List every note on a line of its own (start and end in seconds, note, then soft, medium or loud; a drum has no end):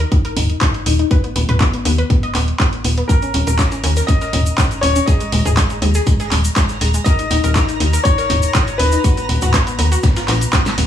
0.00 0.06 A#4 medium
0.00 closed hi-hat soft
0.12 0.18 D#4 medium
0.12 kick loud
0.12 closed hi-hat medium
0.25 0.31 A#4 medium
0.25 closed hi-hat soft
0.36 0.54 D#1 medium
0.36 0.43 D#4 medium
0.36 mid tom medium
0.36 open hi-hat loud
0.36 high conga medium
0.50 closed hi-hat soft
0.61 0.68 D#4 medium
0.61 kick loud
0.61 clap loud
0.61 closed hi-hat medium
0.61 mid tom medium
0.74 closed hi-hat soft
0.86 1.04 D#1 medium
0.86 0.93 D#4 medium
0.86 open hi-hat loud
0.99 1.05 D#4 medium
0.99 closed hi-hat soft
1.11 1.18 B4 loud
1.11 kick loud
1.11 closed hi-hat medium
1.24 1.30 B3 medium
1.24 closed hi-hat soft
1.36 1.45 D#1 loud
1.36 1.42 B3 medium
1.36 open hi-hat loud
1.36 high conga medium
1.49 1.66 D#1 medium
1.49 1.55 B4 medium
1.49 closed hi-hat soft
1.49 mid tom medium
1.60 1.67 B3 medium
1.60 kick loud
1.60 clap loud
1.60 closed hi-hat medium
1.74 1.80 B3 medium
1.74 closed hi-hat soft
1.85 2.03 D#2 loud
1.85 1.92 B3 medium
1.85 open hi-hat loud
1.98 2.04 B4 medium
1.98 closed hi-hat soft
2.10 2.17 B3 medium
2.10 kick loud
2.10 closed hi-hat medium
2.10 mid tom medium
2.23 2.29 D#5 medium
2.23 closed hi-hat soft
2.35 2.53 D#1 medium
2.35 2.42 B3 medium
2.35 clap medium
2.35 open hi-hat loud
2.35 high conga medium
2.48 closed hi-hat soft
2.60 2.66 B3 medium
2.60 kick loud
2.60 clap loud
2.60 closed hi-hat medium
2.73 closed hi-hat soft
2.84 3.02 D#1 loud
2.84 2.91 B3 medium
2.84 open hi-hat loud
2.98 3.04 B3 medium
2.98 closed hi-hat soft
3.08 4.11 A#4 medium
3.08 3.16 A#4 loud
3.08 10.87 A#5 medium
3.08 kick loud
3.08 closed hi-hat medium
3.08 tambourine medium
3.08 shaker medium
3.22 3.28 C#4 medium
3.22 closed hi-hat soft
3.22 shaker soft
3.34 3.43 D#1 loud
3.34 3.41 C#4 medium
3.34 open hi-hat loud
3.34 tambourine medium
3.34 high conga medium
3.47 3.64 D#1 medium
3.47 3.53 A#4 medium
3.47 closed hi-hat soft
3.47 shaker medium
3.59 3.66 C#4 medium
3.59 kick loud
3.59 snare loud
3.59 clap loud
3.59 closed hi-hat medium
3.59 tambourine medium
3.59 shaker medium
3.72 3.78 C#4 medium
3.72 closed hi-hat soft
3.72 shaker soft
3.84 4.02 D#2 loud
3.84 3.90 C#4 medium
3.84 snare soft
3.84 open hi-hat loud
3.84 tambourine medium
3.96 4.03 A#4 medium
3.96 snare soft
3.96 closed hi-hat soft
3.96 shaker medium
4.07 4.15 C#4 medium
4.07 4.84 D#5 loud
4.07 kick loud
4.07 closed hi-hat medium
4.07 tambourine medium
4.07 shaker medium
4.21 4.27 A#4 medium
4.21 snare soft
4.21 closed hi-hat soft
4.21 shaker soft
4.33 4.51 D#1 medium
4.33 4.40 C#4 medium
4.33 mid tom medium
4.33 open hi-hat loud
4.33 tambourine medium
4.33 high conga medium
4.46 closed hi-hat soft
4.46 shaker medium
4.58 4.65 C#4 medium
4.58 kick loud
4.58 snare loud
4.58 clap loud
4.58 closed hi-hat medium
4.58 mid tom medium
4.58 tambourine medium
4.58 shaker medium
4.71 closed hi-hat soft
4.71 shaker soft
4.81 5.01 D#1 medium
4.81 4.89 C#4 medium
4.81 5.05 C#5 medium
4.81 open hi-hat loud
4.81 tambourine medium
4.96 5.02 C#4 medium
4.96 closed hi-hat soft
4.96 shaker medium
5.06 5.14 G#4 loud
5.06 6.02 D#5 medium
5.06 kick loud
5.06 closed hi-hat medium
5.06 tambourine medium
5.06 shaker medium
5.20 5.27 G#3 medium
5.20 closed hi-hat soft
5.20 shaker soft
5.32 5.42 D#1 loud
5.32 5.39 G#3 medium
5.32 open hi-hat loud
5.32 tambourine medium
5.32 high conga medium
5.45 5.63 D#1 loud
5.45 5.51 G#4 loud
5.45 closed hi-hat soft
5.45 mid tom medium
5.45 shaker medium
5.57 5.64 G#3 medium
5.57 kick loud
5.57 snare loud
5.57 clap loud
5.57 closed hi-hat medium
5.57 tambourine medium
5.57 shaker medium
5.70 5.76 G#3 medium
5.70 closed hi-hat soft
5.70 shaker soft
5.82 6.00 D#2 loud
5.82 5.89 G#3 medium
5.82 open hi-hat loud
5.82 tambourine medium
5.94 6.01 G#4 medium
5.94 closed hi-hat soft
5.94 shaker medium
6.07 6.13 G#3 medium
6.07 kick loud
6.07 closed hi-hat medium
6.07 mid tom medium
6.07 tambourine medium
6.07 shaker medium
6.20 6.26 G#4 medium
6.20 snare soft
6.20 closed hi-hat soft
6.20 shaker soft
6.31 6.50 D#1 medium
6.31 6.38 G#3 medium
6.31 clap medium
6.31 open hi-hat loud
6.31 tambourine medium
6.31 high conga medium
6.45 closed hi-hat soft
6.45 shaker medium
6.56 6.63 G#3 medium
6.56 kick loud
6.56 snare loud
6.56 clap loud
6.56 closed hi-hat medium
6.56 tambourine medium
6.56 shaker medium
6.69 snare soft
6.69 closed hi-hat soft
6.69 shaker soft
6.81 6.99 D#1 medium
6.81 6.88 G#3 medium
6.81 open hi-hat medium
6.81 open hi-hat loud
6.94 7.00 G#3 medium
6.94 closed hi-hat soft
6.94 shaker medium
7.04 7.13 A#4 loud
7.04 8.07 D#5 loud
7.04 kick loud
7.04 closed hi-hat medium
7.04 tambourine medium
7.04 shaker medium
7.19 7.25 D#4 medium
7.19 closed hi-hat soft
7.19 shaker soft
7.31 7.40 D#1 loud
7.31 7.37 D#4 medium
7.31 open hi-hat loud
7.31 tambourine medium
7.31 high conga medium
7.44 7.61 D#1 medium
7.44 7.50 A#4 medium
7.44 closed hi-hat soft
7.44 shaker medium
7.55 7.62 D#4 medium
7.55 kick loud
7.55 snare loud
7.55 clap loud
7.55 closed hi-hat medium
7.55 tambourine medium
7.55 shaker medium
7.69 7.75 D#4 medium
7.69 closed hi-hat soft
7.69 shaker soft
7.80 7.98 D#2 loud
7.80 7.87 D#4 medium
7.80 snare soft
7.80 open hi-hat loud
7.80 tambourine medium
7.93 7.99 A#4 medium
7.93 snare soft
7.93 closed hi-hat soft
7.93 shaker medium
8.04 8.12 D#4 medium
8.04 8.81 C#5 loud
8.04 kick loud
8.04 closed hi-hat medium
8.04 tambourine medium
8.04 shaker medium
8.18 8.24 A#4 medium
8.18 snare soft
8.18 closed hi-hat soft
8.18 shaker soft
8.30 8.48 D#1 medium
8.30 8.37 D#4 medium
8.30 mid tom medium
8.30 open hi-hat medium
8.30 tambourine medium
8.30 high conga medium
8.43 closed hi-hat soft
8.43 shaker medium
8.55 8.61 D#4 medium
8.55 kick loud
8.55 snare loud
8.55 clap loud
8.55 closed hi-hat medium
8.55 mid tom medium
8.55 tambourine medium
8.55 shaker medium
8.68 closed hi-hat soft
8.68 shaker soft
8.78 8.97 D#1 medium
8.78 8.86 D#4 medium
8.78 10.48 B4 loud
8.78 open hi-hat loud
8.78 tambourine medium
8.92 8.99 D#4 medium
8.92 closed hi-hat soft
8.92 shaker medium
9.04 9.11 F#4 loud
9.04 kick loud
9.04 closed hi-hat medium
9.04 tambourine medium
9.04 shaker medium
9.17 9.23 B3 medium
9.17 closed hi-hat soft
9.17 shaker soft
9.29 9.38 D#1 loud
9.29 9.36 B3 medium
9.29 open hi-hat loud
9.29 tambourine medium
9.29 high conga medium
9.42 9.59 D#1 loud
9.42 9.48 F#4 medium
9.42 closed hi-hat soft
9.42 mid tom medium
9.42 shaker medium
9.54 9.61 B3 medium
9.54 kick loud
9.54 snare loud
9.54 clap loud
9.54 closed hi-hat medium
9.54 tambourine medium
9.54 shaker medium
9.67 9.73 B3 medium
9.67 closed hi-hat soft
9.67 shaker soft
9.79 9.97 D#2 loud
9.79 9.85 B3 medium
9.79 open hi-hat loud
9.79 tambourine medium
9.92 9.98 F#4 medium
9.92 closed hi-hat soft
9.92 shaker medium
10.03 10.10 B3 medium
10.03 kick loud
10.03 snare loud
10.03 closed hi-hat medium
10.03 mid tom medium
10.03 tambourine medium
10.03 shaker medium
10.16 10.22 F4 medium
10.16 snare loud
10.16 closed hi-hat soft
10.16 tambourine medium
10.16 shaker soft
10.28 10.46 A#1 loud
10.28 10.35 B3 medium
10.28 snare loud
10.28 clap medium
10.28 open hi-hat loud
10.28 tambourine medium
10.28 high conga medium
10.41 closed hi-hat soft
10.41 shaker medium
10.53 10.60 B3 medium
10.53 kick loud
10.53 snare loud
10.53 clap loud
10.53 closed hi-hat medium
10.53 tambourine medium
10.53 shaker medium
10.66 snare soft
10.66 snare medium
10.66 closed hi-hat soft
10.66 shaker soft
10.78 10.87 D#1 loud
10.78 10.84 B3 medium
10.78 open hi-hat medium
10.78 open hi-hat loud